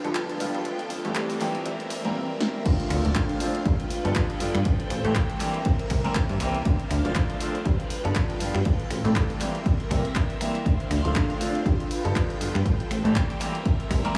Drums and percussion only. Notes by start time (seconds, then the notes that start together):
0.05 closed hi-hat
0.15 clap, closed hi-hat
0.29 closed hi-hat
0.40 open hi-hat
0.55 closed hi-hat
0.65 closed hi-hat
0.79 closed hi-hat
0.90 open hi-hat
1.05 closed hi-hat
1.15 clap, closed hi-hat
1.30 open hi-hat
1.41 clap, open hi-hat
1.55 closed hi-hat
1.66 closed hi-hat
1.80 closed hi-hat
1.90 open hi-hat
2.05 closed hi-hat
2.40 snare
2.66 kick, closed hi-hat, crash
2.80 closed hi-hat
2.90 finger snap, open hi-hat
3.05 closed hi-hat
3.15 kick, clap, closed hi-hat
3.29 closed hi-hat
3.40 open hi-hat
3.55 closed hi-hat
3.66 kick, closed hi-hat
3.80 closed hi-hat
3.90 open hi-hat
4.05 closed hi-hat
4.15 kick, clap, closed hi-hat
4.30 closed hi-hat
4.40 open hi-hat
4.55 finger snap, closed hi-hat
4.65 kick, closed hi-hat
4.80 closed hi-hat
4.90 finger snap, open hi-hat
5.05 closed hi-hat
5.15 kick, clap, closed hi-hat
5.30 closed hi-hat
5.40 clap, open hi-hat
5.54 closed hi-hat
5.65 kick, closed hi-hat
5.79 closed hi-hat
5.90 finger snap, kick, open hi-hat
6.05 closed hi-hat
6.15 kick, clap, closed hi-hat
6.29 closed hi-hat
6.40 finger snap, open hi-hat
6.55 closed hi-hat
6.65 kick, closed hi-hat
6.80 closed hi-hat
6.91 finger snap, open hi-hat
7.05 closed hi-hat
7.15 kick, clap, closed hi-hat
7.30 closed hi-hat
7.41 open hi-hat
7.55 closed hi-hat
7.66 kick, closed hi-hat
7.80 closed hi-hat
7.90 open hi-hat
8.05 closed hi-hat
8.15 kick, clap, closed hi-hat
8.30 closed hi-hat
8.40 open hi-hat
8.55 finger snap, closed hi-hat
8.65 kick, closed hi-hat
8.80 closed hi-hat
8.91 finger snap, open hi-hat
9.05 closed hi-hat
9.16 kick, clap, closed hi-hat
9.30 closed hi-hat
9.41 clap, open hi-hat
9.55 closed hi-hat
9.66 kick, closed hi-hat
9.80 closed hi-hat
9.91 finger snap, kick, open hi-hat
10.05 closed hi-hat
10.15 kick, clap, closed hi-hat
10.30 closed hi-hat
10.41 finger snap, open hi-hat
10.55 closed hi-hat
10.66 kick, closed hi-hat
10.80 closed hi-hat
10.91 finger snap, open hi-hat
11.05 closed hi-hat
11.16 kick, clap, closed hi-hat
11.30 closed hi-hat
11.41 open hi-hat
11.55 closed hi-hat
11.66 kick, closed hi-hat
11.80 closed hi-hat
11.91 open hi-hat
12.05 closed hi-hat
12.16 kick, clap, closed hi-hat
12.30 closed hi-hat
12.41 open hi-hat
12.55 finger snap, closed hi-hat
12.66 kick, closed hi-hat
12.80 closed hi-hat
12.91 finger snap, open hi-hat
13.05 closed hi-hat
13.16 kick, clap, closed hi-hat
13.30 closed hi-hat
13.41 clap, open hi-hat
13.55 closed hi-hat
13.66 kick, closed hi-hat
13.80 closed hi-hat
13.91 finger snap, kick, open hi-hat
14.05 closed hi-hat